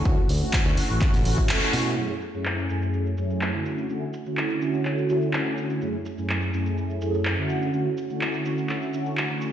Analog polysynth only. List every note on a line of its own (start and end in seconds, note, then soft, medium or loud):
0.05 0.19 A3 loud
0.05 0.19 C#4 medium
0.05 0.20 E4 medium
0.05 0.20 F#4 loud
0.42 0.74 A3 medium
0.42 0.75 C#4 medium
0.42 0.75 E4 medium
0.42 0.75 F#4 medium
0.77 1.23 A3 medium
0.77 1.23 C#4 medium
0.77 1.23 E4 medium
0.77 1.23 F#4 medium
1.25 1.59 A3 loud
1.25 1.59 C#4 medium
1.25 1.59 E4 medium
1.25 1.59 F#4 loud
1.62 1.94 A3 medium
1.62 1.95 C#4 medium
1.62 1.95 E4 medium
1.62 1.95 F#4 loud
1.97 2.11 F#2 medium
1.97 2.11 A3 medium
1.97 2.11 C#4 medium
1.97 2.12 E4 medium
1.97 2.12 G#4 loud
2.34 2.67 F#2 medium
2.34 2.67 A3 medium
2.34 2.67 C#4 medium
2.34 2.67 E4 medium
2.34 2.67 G#4 medium
2.69 3.15 F#2 medium
2.69 3.15 A3 medium
2.69 3.15 C#4 medium
2.69 3.15 E4 medium
2.69 3.15 G#4 medium
3.17 3.51 F#2 medium
3.17 3.51 A3 medium
3.17 3.51 C#4 medium
3.17 3.51 E4 medium
3.17 3.51 G#4 loud
3.54 3.87 D3 medium
3.54 3.87 A3 medium
3.54 3.87 C#4 medium
3.54 3.87 E4 medium
3.54 3.87 F#4 medium
3.89 4.03 D3 medium
3.89 4.03 A3 medium
3.89 4.04 C#4 medium
3.89 4.04 E4 medium
3.89 4.04 F#4 loud
4.26 4.59 D3 medium
4.26 4.59 A3 medium
4.26 4.59 C#4 medium
4.26 4.59 E4 medium
4.26 4.59 F#4 medium
4.61 5.06 D3 medium
4.61 5.07 A3 medium
4.61 5.07 C#4 medium
4.61 5.07 E4 medium
4.61 5.07 F#4 medium
5.09 5.43 D3 medium
5.09 5.43 A3 medium
5.09 5.43 C#4 medium
5.09 5.43 E4 medium
5.09 5.43 F#4 loud
5.46 5.79 D3 medium
5.46 5.79 A3 medium
5.46 5.79 C#4 medium
5.46 5.79 E4 medium
5.46 5.79 F#4 medium
5.81 5.95 F#2 medium
5.81 5.95 A3 medium
5.81 5.95 C#4 medium
5.81 5.96 E4 medium
5.81 5.96 G#4 loud
6.17 6.50 F#2 medium
6.17 6.51 A3 medium
6.17 6.51 C#4 medium
6.17 6.51 E4 medium
6.17 6.51 G#4 medium
6.53 6.98 F#2 medium
6.53 6.99 A3 medium
6.53 6.99 C#4 medium
6.53 6.99 E4 medium
6.53 6.99 G#4 medium
7.01 7.35 F#2 medium
7.01 7.35 A3 medium
7.01 7.35 C#4 medium
7.01 7.35 E4 medium
7.01 7.35 G#4 loud
7.37 7.70 D3 medium
7.37 7.71 A3 medium
7.37 7.71 C#4 medium
7.37 7.71 E4 medium
7.37 7.71 F#4 medium
7.73 7.87 D3 medium
7.73 7.87 A3 medium
7.73 7.87 C#4 medium
7.73 7.88 E4 medium
7.73 7.88 F#4 loud
8.10 8.43 D3 medium
8.10 8.43 A3 medium
8.10 8.43 C#4 medium
8.10 8.43 E4 medium
8.10 8.43 F#4 medium
8.45 8.90 D3 medium
8.45 8.91 A3 medium
8.45 8.91 C#4 medium
8.45 8.91 E4 medium
8.45 8.91 F#4 medium
8.93 9.27 D3 medium
8.93 9.27 A3 medium
8.93 9.27 C#4 medium
8.93 9.27 E4 medium
8.93 9.27 F#4 loud
9.30 9.52 D3 medium
9.30 9.52 A3 medium
9.30 9.52 C#4 medium
9.30 9.52 E4 medium
9.30 9.52 F#4 medium